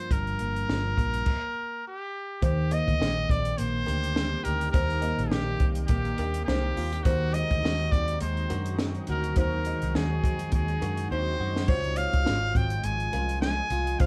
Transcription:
Already playing: F3 A#3 D4 C5
0.11 G1 G2 A#4, kick, closed hi-hat
0.27 closed hi-hat
0.39 G1 A#3, closed hi-hat
0.56 closed hi-hat
0.69 G1 F3, snare
0.97 A#1 A#3, kick, closed hi-hat
1.14 closed hi-hat
1.26 kick, crash
1.87 G4
2.42 D#2 D#3 G3 A#3 C4 D#4 G4 C5, kick, closed hi-hat
2.71 A#3 G4 D#5, closed hi-hat
2.87 D2, kick, closed hi-hat
3.00 A#1 G4, snare
3.29 A#1 C4 D5, kick, closed hi-hat
3.45 closed hi-hat
3.58 A#1 A#3 C5, closed hi-hat
3.86 D2 D4 G4 A#4, closed hi-hat
4.04 closed hi-hat
4.15 C4, snare
4.43 D2 G4 A#4, closed hi-hat
4.61 closed hi-hat
4.72 D#2 D#3 C4 D#4 A#4 C5, kick, closed hi-hat
4.90 closed hi-hat
5.02 A#3 G4 D#5, closed hi-hat
5.18 A#1, closed hi-hat
5.30 A#1 G4, snare
5.60 C2 C4, kick, closed hi-hat
5.75 closed hi-hat
5.86 A#1 A#3 G4, kick, closed hi-hat
6.05 closed hi-hat
6.18 D#2 D4 G4 A#4, closed hi-hat
6.34 closed hi-hat
6.45 C2 C4 G4 C5, snare
6.49 D#4
6.77 D#2 F4, open hi-hat
6.93 G4, closed hi-hat
7.03 D#2 D#3 F#3 G#3 C4 D#4 F#4 C5, kick, closed hi-hat
7.34 G#3 F#4 D#5, closed hi-hat
7.51 D2, kick, closed hi-hat
7.64 D#2 F#4, snare
7.79 closed hi-hat
7.92 D#2 C4 D5, kick, closed hi-hat
8.08 closed hi-hat
8.21 D#2 G#3 C5, closed hi-hat
8.37 closed hi-hat
8.50 F#2 D4 F#4 A#4, closed hi-hat
8.66 closed hi-hat
8.79 C4, snare
8.95 closed hi-hat
9.07 D2 F#4 A#4, closed hi-hat
9.24 closed hi-hat
9.36 D#2 D#3 D#4 A#4 C5, kick, closed hi-hat
9.65 G#3 F#4 D#5, closed hi-hat
9.82 C2, closed hi-hat
9.95 D#2 F#4 G#4, snare
10.23 F2 C4, kick, closed hi-hat
10.39 closed hi-hat
10.52 D#2 G#3 G#4, kick, closed hi-hat
10.68 closed hi-hat
10.82 F#2 D4 F#4 A#4, closed hi-hat
10.97 closed hi-hat
11.11 D#2 C4 D#4 C5
11.40 F#2 F#4
11.56 snare
11.68 C#2 F3 F4 C5 C#5, kick, splash
11.84 closed hi-hat
11.96 G#3 F4 C#5 F5, closed hi-hat
12.13 C2, kick, closed hi-hat
12.25 G#1 F4, snare
12.55 G#1 C4 G5, kick, closed hi-hat
12.70 closed hi-hat
12.84 G#1 G#3 G#5, closed hi-hat
13.00 closed hi-hat
13.13 C2 C#4 F4 A#4, closed hi-hat
13.29 closed hi-hat
13.41 G#5, snare
13.70 C2 F4, closed hi-hat
13.87 closed hi-hat
13.99 C#2 C#3 F4 C5 F5, kick, closed hi-hat

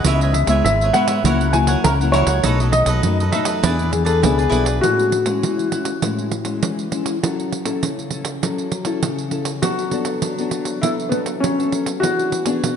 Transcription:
Already playing: D#5
0.04 C#2 C#3 G#3 B3 E4 B4 C#5 E5, pandeiro
0.21 B4 C#5 E5, pandeiro
0.33 E5, muted cavaquinho stroke, pandeiro
0.46 C#2 G#3 B3 E4 C#5 E5, pandeiro
0.51 B4
0.65 G#1 G#2 E5, pandeiro
0.81 B4 C#5 E5, pandeiro
0.93 G#3 B3 E4 B4 C#5 E5 F#5, pandeiro
1.08 B4 C#5 E5, pandeiro
1.23 C#2 C#3 F#3 A#3 E4 A#4 C#5 F#5, pandeiro
1.41 pandeiro
1.53 F#3 A#3 E4 G#5, muted cavaquinho stroke, pandeiro
1.67 A#4 C#5 F#5, pandeiro
1.84 C#2 C#3 E4 A#4 C#5 F#5, pandeiro
2.01 F#3 A#3 E4 A#4 C#5 F#5, pandeiro
2.12 E4 A#4 C#5 F#5, pandeiro
2.27 C#2 A#4 C#5 F#5, pandeiro
2.44 B1 B2 F#3 A3 D#4 A4 B4 D#5, pandeiro
2.60 F#3 A3 D#4 A4 B4 D#5, pandeiro
2.72 D#5, muted cavaquinho stroke, pandeiro
2.86 B1 A4 B4 D#5, pandeiro
3.03 F#2 F#3 A3 D#4, pandeiro
3.20 A4 B4 D#5, pandeiro
3.32 F#3 A3 D#4 A4 B4 D#5 E5, pandeiro
3.45 A4 B4 D#5, pandeiro
3.63 E2 E3 B3 D4 E4 G#4 B4 D5, pandeiro
3.67 G#4
3.79 B3 D4 G#4, pandeiro
3.92 G#4, muted cavaquinho stroke, pandeiro
4.05 G#4 A4 B4 D5, pandeiro
4.22 C#2 B2 B3 D4 E4 G#4 B4 D5, pandeiro
4.38 G#4 B4 D5, pandeiro
4.49 B1 B3 D4 E4 G#4 B4 D5, pandeiro
4.54 G#4
4.64 G#4 B4 D5, pandeiro
4.81 A2 G#3 C#4 E4 F#4, pandeiro
4.99 pandeiro
5.12 pandeiro
5.26 G#3 C#4 E4, pandeiro
5.43 E3, pandeiro
5.59 pandeiro
5.72 G#3 C#4 E4, pandeiro
5.85 pandeiro
6.02 A2 G#3 C#4 E4, pandeiro
6.18 pandeiro
6.31 pandeiro
6.45 G#3 C#4 E4, pandeiro
6.62 E3, pandeiro
6.79 pandeiro
6.91 G#3 C#4 E4, pandeiro
7.06 pandeiro
7.22 F#3 C#4 E4 A4, pandeiro
7.40 pandeiro
7.52 pandeiro
7.65 C#4 E4 A4, pandeiro
7.83 C#3, pandeiro
7.99 pandeiro
8.11 C#4 E4 A4, pandeiro
8.25 pandeiro
8.42 F#3 C#4 E4 A4, pandeiro
8.58 pandeiro
8.72 pandeiro
8.84 C#4 E4 A4, pandeiro
9.03 C#3, pandeiro
9.19 pandeiro
9.31 C#4 E4 A4, pandeiro
9.45 pandeiro
9.62 F#3 B3 D4 F#4 A4, pandeiro
9.79 pandeiro
9.91 B3 D4 A4, pandeiro
10.05 pandeiro
10.22 F#3, pandeiro
10.39 B3 D4 A4, pandeiro
10.51 pandeiro
10.65 pandeiro
10.82 F#3 B3 D4 E4 A4, pandeiro
11.00 pandeiro
11.09 B3 D4 A4, pandeiro
11.26 pandeiro
11.40 F#3 C#4, pandeiro
11.59 B3 A4, pandeiro
11.72 pandeiro
11.86 pandeiro
12.00 E3 B3 D4 F#4 G#4, pandeiro
12.19 pandeiro
12.32 pandeiro
12.45 B3 D4 G#4, pandeiro
12.62 B2, pandeiro

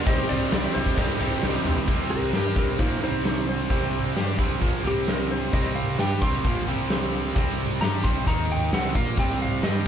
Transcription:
0.06 C2 C3 D#3 G3 C4 D#4 G4 C5 D#5, kick, ride, cowbell
0.29 C2 C3 D#3 G3 C4 D#4 G4 D5, ride
0.52 C2 C3 D#3 G3 C4 D#4 G4 C5, snare, ride, cowbell
0.74 C2 C3 D#3 G3 C4 D#4 G4 C5, ride
0.86 kick, snare
0.96 C2 C3 D#3 G3 C4 D#4 G4 A4, kick, ride, cowbell
1.20 C2 C3 D#3 G3 C4 D#4 G4, ride
1.42 C2 C3 D#3 G3 C4 D#4 G4 C5, snare, cowbell
1.65 C2 C3 D#3 G3 C4 D#4 G4, mid tom
1.76 floor tom
1.87 C2 C3 G3 C4, kick, crash
1.99 snare
2.10 G4 A#4, closed hi-hat
2.33 G2 G3 D4 G4 A#4, snare, closed hi-hat
2.56 C2 C3 G3 C4 G4 A#4, kick, closed hi-hat
2.79 A#1 A#2 F3 A#3 D#4 C5, kick, closed hi-hat
3.02 C2 C3 G3 C4 D#4 C5, closed hi-hat
3.25 D#4 C5, snare, closed hi-hat
3.48 C5, closed hi-hat
3.59 closed hi-hat
3.70 C2 C3 G3 C4, kick, closed hi-hat
3.82 snare
3.93 closed hi-hat
4.16 G2 G3 D4 G4, snare, closed hi-hat
4.38 C2 C3 G3 C4, kick, closed hi-hat
4.50 closed hi-hat
4.62 A#1 A#2 F3 A#3, kick, closed hi-hat
4.85 C2 C3 G3 C4 G4, closed hi-hat
4.96 closed hi-hat
5.08 A#4, snare, closed hi-hat
5.31 C5, closed hi-hat
5.42 closed hi-hat
5.53 C2 C3 G3 C4 D#5, kick, closed hi-hat
5.75 F5, closed hi-hat
5.98 G2 G3 D4 G4 G5, snare, closed hi-hat
6.21 C2 C3 G3 C4 C6, kick, closed hi-hat
6.44 A#1 A#2 F3 A#3, kick, closed hi-hat
6.67 C2 C3 G3 C4, closed hi-hat
6.90 snare, closed hi-hat
7.13 closed hi-hat
7.25 closed hi-hat
7.36 C2 C3 G3 C4, kick, closed hi-hat
7.59 closed hi-hat
7.80 G2 G3 D4 G4 A#5, snare, closed hi-hat
8.04 C2 C3 G3 C4 C6, kick, closed hi-hat
8.16 closed hi-hat
8.27 D#2 D#3 A#3 D#4 A#5, kick, closed hi-hat
8.50 G5, closed hi-hat
8.62 closed hi-hat
8.71 C2 C3 G3 C4 F#5, snare, closed hi-hat
8.95 A#2 A#3 F4 A#4 F5, kick, closed hi-hat
9.06 closed hi-hat
9.17 C2 C3 G3 C4 G5, kick, closed hi-hat
9.40 F5, closed hi-hat
9.63 G2 G3 D4 G4 D#5, snare, closed hi-hat

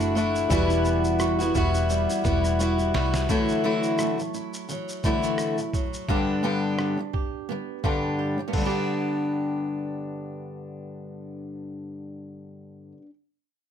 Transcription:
Already playing: F#1 E3 A3 D4 E4 F#4 D5
0.00 E4, shaker
0.15 A3 D4 E4 F#4, shaker
0.35 E4, shaker
0.48 E1 E3 G3 B3 E4 F#4 B4, kick, shaker
0.70 E4, shaker
0.85 B3, shaker
1.04 E4, shaker
1.19 F#4, cross-stick, shaker
1.39 B3 E4 F#4, shaker
1.55 E1 G3 B3 E4 F#4, kick, shaker
1.74 E4, shaker
1.90 G3, shaker
2.09 E4, shaker
2.24 E1 G3 B3 E4 F#4, kick, shaker
2.44 E4, cross-stick, shaker
2.59 G3 B3 E4 F#4, shaker
2.78 E4, shaker
2.94 C2 G3 B3 E4 F#4, snare
3.14 E4, snare, shaker
3.29 D3 E3 F#3 A3 E4 F#4, kick, shaker
3.48 shaker
3.64 D3 E3 F#3 A3 E4 F#4
3.83 shaker
3.98 A3, cross-stick, shaker
4.18 D3 E3, shaker
4.34 E4, shaker
4.54 shaker
4.69 D3 E3 F#3, shaker
4.89 shaker
5.03 D3 E3 G3 A3 E4 F#4, kick, shaker
5.23 A3, shaker
5.38 E4, cross-stick, shaker
5.58 D3 E3, shaker
5.74 F#3, kick, shaker
5.93 shaker
6.08 G2 D3 G3 B3 D4 G4, kick
6.43 G2 D3 G3 B3 D4 G4
6.78 D4, cross-stick
6.97 G2 D3
7.13 G4, kick
7.49 G2 D3 G3 B3
7.83 G2 D3 G3 B3 D4 G4, kick
8.19 G4
8.38 G2 G3
8.48 G2 B3
8.53 D3, kick, crash
8.57 G3 D4
8.62 B3 D4
8.66 G4

